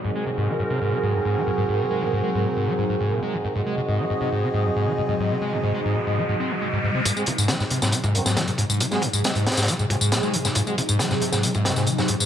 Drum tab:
HH |--------------------------------|--------------------------------|--------------------------------|--------------------------------|
TB |--------------------------------|--------------------------------|--------------------------------|--------------------------------|
SD |--------------------------------|--------------------------------|--------------------------------|--------------------------------|
BD |--------------------------------|--------------------------------|--------------------------------|--------------------------------|

HH |x---x---x---x---x---x---x-x-x---|x---x---x-x-xxxxx---x---x---x---|x---x---x---x---x---x---x---x---|
TB |x-x---x-x-x---x-x-x---x-x-x---x-|x-x---x-x-x---x-x-x---x-x-x---x-|x-x---x-x-x---x-x-x---x-x-x---x-|
SD |--------o-o---o-------o-o-------|--o-----o---oooo--------o-----o-|--------o-o---o-----o-o---o-----|
BD |o---o-------------o---------o---|o---o-----------o---o-----------|o---o-------------o---------o---|